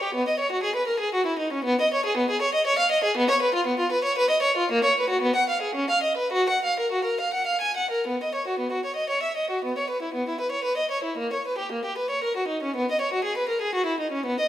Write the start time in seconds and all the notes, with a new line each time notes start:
0.03 G4
0.15 B3
0.28 D#5
0.39 C#5
0.52 F#4
0.63 G#4
0.76 B4
0.87 A#4
1.00 G#4
1.15 F#4
1.26 E4
1.39 D#4
1.53 C#4
1.64 B3
1.81 D#5
1.94 C#5
2.05 G#4
2.17 B3
2.30 G#4
2.42 C#5
2.55 D#5
2.67 C#5
2.79 F5
2.91 D#5
3.04 G#4
3.17 B3
3.30 C#5
3.42 B4
3.55 F4
3.67 B3
3.79 F4
3.92 B4
4.04 C#5
4.18 B4
4.30 D#5
4.43 C#5
4.57 F4
4.72 A#3
4.84 C#5
5.00 B4
5.10 F#4
5.22 B3
5.36 F#5
5.49 F5
5.62 G#4
5.75 C#4
5.90 F5
6.03 D#5
6.17 B4
6.33 F#4
6.49 F#5
6.65 F5
6.80 A#4
6.92 F#4
7.05 A#4
7.21 F5
7.34 F#5
7.47 F5
7.61 G#5
7.77 F#5
7.91 A#4
8.07 B3
8.23 D#5
8.35 C#5
8.47 F#4
8.59 B3
8.72 F#4
8.85 C#5
8.96 D#5
9.10 C#5
9.23 E5
9.37 D#5
9.50 F#4
9.65 B3
9.78 C#5
9.90 B4
10.02 E4
10.14 B3
10.29 E4
10.40 B4
10.52 C#5
10.64 B4
10.77 D#5
10.91 C#5
11.04 E4
11.18 A#3
11.33 C#5
11.47 B4
11.58 G4
11.72 A#3
11.85 G4
11.98 B4
12.10 C#5
12.24 A#4
12.37 F#4
12.48 D#4
12.63 C#4
12.76 B3
12.91 D#5
13.01 C#5
13.13 F#4
13.24 G#4
13.37 B4
13.49 A#4
13.62 G#4
13.75 F#4
13.86 E4
14.00 D#4
14.12 C#4
14.26 B3
14.40 D#5